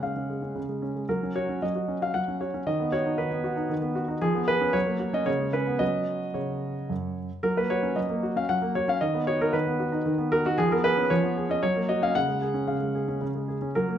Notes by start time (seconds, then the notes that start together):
Already playing: C#3 G#3 C#4 F#5
0.03 C#3 F5
0.16 C#4
0.30 G#3
0.42 C#4
0.55 C#3
0.69 G#3
0.82 C#4
0.96 G#3
1.09 F#3 A#4
1.23 C#4
1.36 F#4 C#5
1.49 C#4
1.62 F#3 D#5
1.75 F#4
1.88 C#4
2.02 F#4 F5
2.14 F#3 F#5
2.28 C#4
2.41 F#4 C#5
2.54 C#4
2.67 D#3 D#5
2.80 B3
2.92 F#4 C#5
3.06 D#4
3.18 D#3 B4
3.31 B3
3.44 F#4
3.56 D#4
3.69 D#3
3.82 B3
3.95 F#4
4.08 D#4
4.21 F3 G#4
4.35 B3
4.48 G#4 B4
4.61 C#4
4.73 F#3 C#5
4.86 A#3
5.00 F#4
5.13 C#4 D#5
5.26 C#3 C#5
5.39 G#3
5.53 C#4 B4
5.67 B3
5.79 F#3 C#4 F#4 D#5
6.34 C#3 C#5
6.89 F#2
7.43 F#3 A#4
7.57 A#3 B4
7.70 F#4 C#5
7.83 C#4
7.96 F#3 D#5
8.10 A#3
8.23 F#4
8.36 C#4 F5
8.49 F#3 F#5
8.62 A#3
8.75 F#4 C#5
8.88 C#4 F5
9.01 D#3 D#5
9.14 B3
9.27 F#4 C#5
9.40 D#4 A#4
9.53 D#3 B4
9.67 B3
9.80 F#4
9.92 D#4
10.06 D#3
10.18 B3
10.32 F#4 A#4
10.45 D#4 F#4
10.58 F3 G#4
10.71 B3 A#4
10.84 G#4 B4
10.97 C#4
11.10 F3 C#5
11.23 B3
11.37 G#4
11.49 C#4 D#5
11.63 F#3 C#5
11.76 A#3
11.89 F#4 D#5
12.02 C#4 F5
12.15 C#3 F#5
12.28 G#3
12.42 G#4
12.54 C#4
12.68 C#3 F5
12.81 G#3
12.95 G#4
13.08 C#4
13.21 C#3
13.35 G#3
13.48 G#4
13.62 C#4
13.75 F#3 A#4
13.88 A#3